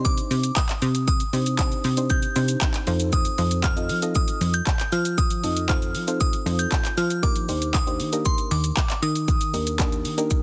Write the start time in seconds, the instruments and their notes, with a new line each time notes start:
Already playing: analog synth bass C3, synth pluck C4 D4 D#4 G4 C5
0.05 synth bell D6, kick, shaker
0.17 closed hi-hat, shaker
0.31 analog synth bass C3, open hi-hat, shaker
0.43 closed hi-hat, shaker
0.56 synth bell D#6, kick, clap, shaker
0.69 clap, closed hi-hat, shaker
0.82 analog synth bass C3, open hi-hat, shaker
0.95 closed hi-hat, shaker
1.07 synth bell D#6, kick, shaker
1.20 closed hi-hat, shaker
1.33 analog synth bass C3, synth pluck C4 D4 D#4 G4 C5, open hi-hat, shaker
1.46 closed hi-hat, shaker
1.59 synth pluck C4 D4 D#4 G4 C5, synth bell D#6, kick, clap, shaker
1.72 closed hi-hat, shaker
1.84 analog synth bass C3, open hi-hat, shaker
1.97 synth pluck C4 D4 D#4 G4 C5, closed hi-hat, shaker
2.10 synth bell G6, kick, shaker
2.22 closed hi-hat, shaker
2.36 analog synth bass C3, synth pluck C4 D4 D#4 G4 C5, open hi-hat, shaker
2.48 closed hi-hat, shaker
2.61 kick, clap, shaker
2.74 clap, closed hi-hat, shaker
2.87 analog synth bass F2, synth pluck C4 D#4 F4 A4 C5, open hi-hat, shaker
3.00 closed hi-hat, shaker
3.12 synth bell D#6, kick, shaker
3.25 closed hi-hat, shaker
3.38 analog synth bass F2, synth pluck C4 D#4 F4 A4 C5, open hi-hat, shaker
3.51 closed hi-hat, shaker
3.64 synth bell F6, kick, clap, shaker
3.76 synth pluck C4 D#4 F4 A4 D#5, closed hi-hat, shaker
3.89 analog synth bass F3, open hi-hat, shaker
4.02 synth pluck C4 D#4 F4 A4 D#5, closed hi-hat, shaker
4.15 synth bell D#6, kick, shaker
4.28 closed hi-hat, shaker
4.41 analog synth bass F2, open hi-hat, shaker
4.54 synth bell G6, closed hi-hat, shaker
4.67 kick, clap, shaker
4.79 clap, closed hi-hat, shaker
4.92 analog synth bass F3, synth bell F6, open hi-hat, shaker
5.05 closed hi-hat, shaker
5.18 synth bell D#6, kick, shaker
5.30 closed hi-hat, shaker
5.43 analog synth bass F2, synth pluck C4 D#4 F4 A4 D#5, open hi-hat, shaker
5.57 closed hi-hat, shaker
5.69 synth pluck C4 D#4 F4 A4 C5, synth bell F6, kick, clap, shaker
5.82 closed hi-hat, shaker
5.95 analog synth bass F3, open hi-hat, shaker
6.07 synth pluck C4 D#4 F4 A4 C5, closed hi-hat, shaker
6.20 synth bell D#6, kick, shaker
6.33 closed hi-hat, shaker
6.46 analog synth bass F2, synth pluck C4 D#4 F4 A4 C5, open hi-hat, shaker
6.59 synth bell G6, closed hi-hat, shaker
6.72 kick, clap, shaker
6.85 clap, closed hi-hat, shaker
6.97 analog synth bass F3, synth bell F6, open hi-hat, shaker
7.10 closed hi-hat, shaker
7.23 synth pluck A#3 D4 D#4 G4 A#4, synth bell D6, kick, shaker
7.36 closed hi-hat, shaker
7.48 analog synth bass D#2, synth pluck A#3 D4 D#4 G4 C5, open hi-hat, shaker
7.62 closed hi-hat, shaker
7.74 synth bell D#6, kick, clap, shaker
7.87 synth pluck A#3 D4 D#4 G4 C5, closed hi-hat, shaker
8.00 analog synth bass D#3, open hi-hat, shaker
8.12 synth pluck A#3 D4 D#4 G4 A#4, closed hi-hat, shaker
8.25 synth bell C6, kick, shaker
8.38 closed hi-hat, shaker
8.51 analog synth bass D#2, synth bell D6, open hi-hat, shaker
8.64 closed hi-hat, shaker
8.77 kick, clap, shaker
8.90 clap, closed hi-hat, shaker
9.02 analog synth bass D#3, synth bell D#6, open hi-hat, shaker
9.15 closed hi-hat, shaker
9.28 kick, shaker
9.41 closed hi-hat, shaker
9.53 analog synth bass D#2, synth pluck A#3 D4 D#4 G4 A#4, open hi-hat, shaker
9.67 closed hi-hat, shaker
9.79 synth pluck A#3 D4 D#4 G4 A#4, kick, clap, shaker
9.92 closed hi-hat, shaker
10.05 analog synth bass D#3, open hi-hat, shaker
10.18 synth pluck A#3 D4 D#4 G4 A#4, closed hi-hat, shaker
10.30 kick, shaker